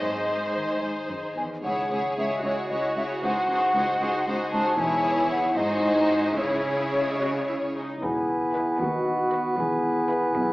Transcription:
Already playing: D#4
0.00 G#1 G#2 D#4 G#4 C5 D#5
0.28 G#4
0.56 D#3
0.82 G#2 G#4
1.09 F#2 D#4
1.37 E2 G#4 G#5
1.64 C#2 C#3 E4 G#4 C#5 F#5
1.90 C#2 E4 G#4 C#5
2.17 C#2 G#3 E4 G#4 C#5 E5
2.44 C#2 E4 F#4 G#4 C#5
2.70 C#2 E4 G#4 C#5 D#5
2.96 C#2 E4 G#4 C#5 E5
3.22 C#2 C#3 D#4 G#4 C5 F#5
3.49 C#2 D#4 G#4 C5
3.75 C#2 G#3 D#4 G#4 C5
4.00 C#2 D#4 G#4 C5
4.27 C#2 D#4 G#4 C5
4.52 C#2 D#4 G#4 C5 A5
4.79 E1 E2 E3 E4 G#4 C#5 G#5
5.05 E4
5.31 E4 G#4 F#5
5.57 G#1 G#2 D#4 F#4 G#4 C5 D#5
5.84 C4
6.11 F#4 G#4
6.38 C#2 C#3 E4 G#4 C#5
6.93 G#3
7.20 F#4 G#4
7.47 E4
7.75 D#4 G#4
8.02 E1 E2 E3 B3 E4 G#4 B4 G#5
8.29 E4
8.55 E4 G#4 B4
8.81 D#2 D#3 F#4 F#5
9.06 B3
9.32 F#4 B4
9.58 E1 E2 E3 E4 G#4 G#5
9.83 E4
10.08 E4 G#4 B4
10.34 B1 B2 E5

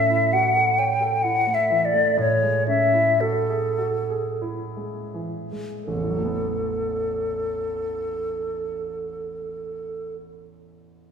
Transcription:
Already playing: A2 A3 C#4 E5
0.10 E4
0.33 F#4 F#5
0.56 A4
0.78 C#5 G5
1.01 A4
1.23 E4 F#5
1.46 A3
1.54 E5
1.70 E3
1.85 D5
1.94 A3
2.17 A2 C#5
2.42 G#3
2.68 C#4 E5
2.94 E4
3.21 F#4 A4
3.49 G#4
3.78 F#4
4.10 G#4
4.42 E4
4.76 G#3
5.14 E3
5.52 G#3
5.84 A1 A4
5.95 E2
6.03 E3
6.10 F#3
6.17 A3
6.25 B3

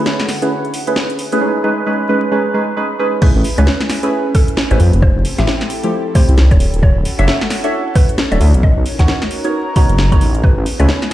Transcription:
Already playing: D3 A3 D4 E4 F#4 A4 C#5 E5 F#5
0.06 snare
0.20 snare, closed hi-hat
0.29 snare, open hi-hat
0.42 A3 C#4 E4 G#4 B4, closed hi-hat
0.65 closed hi-hat
0.74 open hi-hat
0.87 A3 C#4 E4 G#4 B4, closed hi-hat
0.96 snare
1.10 closed hi-hat
1.19 open hi-hat
1.32 A3 C#4 E4 G#4 B4, closed hi-hat
1.41 G#3 C#4 D#4 G#4 B4
1.64 G#3 C#4 D#4 G#4 B4
1.86 G#3 C#4 D#4 G#4 B4
2.09 G#3 C#4 D#4 G#4 B4
2.32 G#3 C#4 D#4 G#4 B4
2.54 G#3 C#4 D#4 G#4 B4
2.77 G#3 C#4 D#4 G#4 B4
2.99 G#3 C#4 D#4 G#4 B4
3.22 A3 C#4 E4 G#4 B4, kick, crash
3.34 A1 B4
3.40 G#5, open hi-hat
3.58 C#2 A3 C#4 E4 G#4 B4 C#5, closed hi-hat
3.67 snare
3.81 snare, closed hi-hat
3.90 snare, open hi-hat
4.03 A3 C#4 E4 G#4 B4, closed hi-hat
4.35 A4, kick, open hi-hat
4.48 closed hi-hat
4.57 snare
4.71 A1 A3 C#4 E4 G#4 B4 C5, closed hi-hat
4.79 F2 C4 E4 G4 A4, open hi-hat
4.93 F1 G5, closed hi-hat
5.02 C5, kick
5.10 A4
5.16 F1
5.25 open hi-hat
5.38 A1 F3 A3 C4 E4 G4 E5, snare, closed hi-hat
5.47 snare
5.61 snare, closed hi-hat
5.70 open hi-hat
5.83 F3 A3 C4 E4 G4, closed hi-hat
6.15 F3 A3 C4 E4 G4 C5, kick, open hi-hat
6.29 C2, closed hi-hat
6.38 snare
6.51 D1 C#5, kick, closed hi-hat
6.60 C#4 F#4 A4, open hi-hat
6.69 C#5 F#5
6.74 D1, closed hi-hat
6.83 C#5, kick
6.96 D1
7.05 open hi-hat
7.19 F#1 D4 F#4 A4 C#5 E5, closed hi-hat
7.28 snare
7.41 snare, closed hi-hat
7.50 snare, open hi-hat
7.64 D4 F#4 A4 C#5 E5, closed hi-hat
7.95 B4, kick, open hi-hat
8.09 closed hi-hat
8.18 snare
8.32 D1 D4 F#4 A4 C#5 D5 E5, closed hi-hat
8.40 D2, open hi-hat
8.54 B1, closed hi-hat
8.63 D#4 A#4 D#5, kick
8.77 B1
8.86 open hi-hat
8.99 D#2 B3 D#4 F#4 A#4 C#5 F#5, kick, snare, closed hi-hat
9.08 snare
9.22 A#5, snare, closed hi-hat
9.31 open hi-hat
9.44 B3 D#4 F#4 A#4 C#5, closed hi-hat
9.76 B3 D#4 F#4 A#4 C#5 A#5, kick, open hi-hat
9.89 F#1, closed hi-hat
9.98 snare
10.12 B3 D#4 F#4 A#4 C#5 A#5, kick, closed hi-hat
10.21 A1, open hi-hat
10.35 closed hi-hat
10.43 B3 C#4 E4 G#4 B4, kick
10.57 A1
10.66 G#5, open hi-hat
10.73 B4
10.80 C#2 A3 C#4 E4 G#4 B4 C#5, closed hi-hat
10.89 snare
11.02 snare, closed hi-hat

